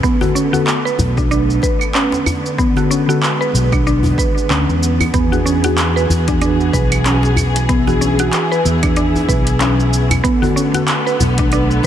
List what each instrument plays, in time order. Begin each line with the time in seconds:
Already playing: string section B3
0.03 string section D3 A3, synth pluck B3, kick, djembe tone, cabasa
0.20 synth keys D3 B3 A4, synth pluck F#4, djembe slap, djembe tone, cabasa
0.35 synth pluck C#4, cabasa
0.52 synth keys D3 B3 A4, synth pluck F#4, djembe tone, cabasa
0.67 clap, cabasa
0.85 synth pluck B4, cabasa
0.99 fretless electric bass B1, djembe bass, cabasa
1.17 synth pluck D4, kick, cabasa
1.31 synth pluck D4, cabasa
1.50 cabasa
1.62 synth pluck B4, kick, djembe slap, cabasa
1.81 cabasa, claves
1.95 synth pluck C#4, clap, cabasa
2.12 djembe slap, cabasa
2.26 djembe bass, cabasa, claves
2.46 cabasa
2.58 string section G#3, synth pluck B3, kick, cabasa
2.75 synth keys D3 B3 A4, synth pluck F#4, djembe slap, djembe tone, cabasa
2.91 synth pluck C#4, cabasa
3.07 synth keys D3 B3 A4, synth pluck F#4, cabasa
3.23 clap, cabasa
3.41 synth pluck B4, cabasa
3.54 fretless electric bass B1, cabasa
3.72 synth pluck D4, kick, cabasa, claves
3.87 synth pluck D4, cabasa
4.03 djembe bass, cabasa
4.18 synth pluck B4, kick, cabasa
4.38 cabasa
4.50 fretless electric bass D2, synth pluck C#4, clap, cabasa
4.68 fretless electric bass E2, cabasa
4.83 cabasa
5.00 djembe bass, cabasa, claves
5.14 fretless electric bass E2, string section E3 F#4 G#4, synth pluck B3, kick, closed hi-hat, cabasa
5.31 synth keys E3 D4 G#4, synth pluck F#4, djembe slap, djembe tone, cabasa
5.46 synth pluck C#4, cabasa
5.63 synth keys E3 D4 G#4, synth pluck F#4, closed hi-hat, djembe tone, cabasa
5.78 clap, closed hi-hat, cabasa
5.96 synth pluck B4, cabasa
6.09 fretless electric bass E2, djembe bass, cabasa
6.28 synth pluck D4, kick, closed hi-hat, cabasa
6.41 synth pluck D4, closed hi-hat, cabasa
6.60 cabasa
6.73 fretless electric bass B1, synth pluck B4, kick, djembe slap, cabasa
6.92 closed hi-hat, cabasa, claves
7.06 synth pluck C#4, clap, closed hi-hat, cabasa
7.23 djembe slap, cabasa
7.36 djembe bass, cabasa, claves
7.56 closed hi-hat, cabasa
7.69 synth pluck B3, string section E4, kick, closed hi-hat, cabasa
7.86 synth keys E3 D4 G#4, synth pluck F#4, djembe slap, djembe tone, cabasa
8.01 synth pluck C#4, cabasa
8.18 synth keys E3 D4 G#4, synth pluck F#4, closed hi-hat, cabasa
8.33 clap, closed hi-hat, cabasa
8.52 synth pluck B4, cabasa
8.65 fretless electric bass E2, cabasa
8.83 synth pluck D4, kick, closed hi-hat, cabasa, claves
8.96 synth pluck D4, closed hi-hat, cabasa
9.15 djembe bass, cabasa
9.29 fretless electric bass B1, synth pluck B4, kick, cabasa
9.47 closed hi-hat, cabasa
9.60 synth pluck C#4, clap, closed hi-hat, cabasa
9.80 cabasa
9.93 cabasa
10.11 closed hi-hat, djembe bass, cabasa, claves
10.24 string section D3 A3 B3, synth pluck B3, kick, closed hi-hat, djembe tone, cabasa
10.41 synth keys D3 B3 A4, synth pluck F#4, djembe slap, djembe tone, cabasa
10.56 synth pluck C#4, cabasa
10.73 synth keys D3 B3 A4, synth pluck F#4, closed hi-hat, djembe tone, cabasa
10.88 clap, closed hi-hat, cabasa
11.06 synth pluck B4, cabasa
11.20 fretless electric bass B1, djembe bass, cabasa
11.38 synth pluck D4, kick, closed hi-hat, cabasa
11.52 synth pluck D4, closed hi-hat, cabasa
11.71 cabasa
11.83 djembe slap